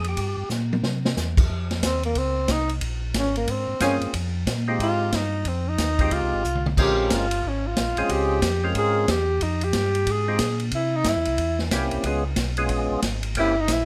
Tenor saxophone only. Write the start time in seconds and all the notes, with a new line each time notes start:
1.86 C4
2.05 A#3
2.18 C4
2.51 D#4
3.19 C#4
3.37 A#3
3.50 C4
3.83 C#4
4.82 F4
5.16 D#4
5.48 C4
5.68 D#4
6.13 F4
6.81 G4
7.14 F4
7.48 C#4
7.67 F4
8.11 G4
8.78 G#4
9.10 G4
9.42 D#4
9.64 G4
10.11 G#4
10.75 E4
10.96 D#4
11.08 E4
13.39 E4
13.60 D#4
13.72 E4